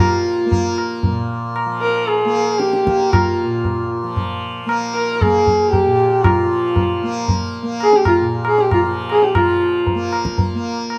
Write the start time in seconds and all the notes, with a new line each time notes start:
Already playing: A#2 F3 A#3 F4
0.45 A#3
0.52 tabla tin, tabla ge
0.78 tabla na
1.03 A#2, tabla tin, tabla ge
1.56 tabla na
1.66 F3
1.81 A#4
2.07 G#4, tabla tin
2.25 A#3
2.59 G4, tabla te
2.73 tabla te
2.84 A#3, tabla ke
2.99 tabla te
3.13 F4, tabla na, tabla ge
3.44 A#2
3.64 tabla tin, tabla ge
4.03 F3
4.16 tabla tin, tabla ge
4.66 A#3, tabla na
4.95 A#4
5.21 A#3 G#4, tabla na, tabla ge
5.47 tabla ge
5.71 G4, tabla tin, tabla ge
5.85 A#2
6.23 F4, tabla na, tabla ge
6.44 F3
6.76 tabla tin, tabla ge
7.03 A#3
7.28 tabla tin, tabla ge
7.62 A#3
7.80 G#4, tabla na
7.93 G4, tabla te
8.05 F4, tabla na, tabla ge
8.20 A#2
8.45 G#4, tabla na
8.58 G4, tabla te
8.71 F4, tabla na, tabla ge
8.81 F3
9.10 G#4, tabla na
9.22 G4, tabla te
9.35 F3 F4, tabla na, tabla ge
9.87 tabla tin, tabla ge
9.95 A#3
10.13 tabla na
10.25 tabla ke
10.38 tabla tin, tabla ge
10.55 A#3
10.90 tabla na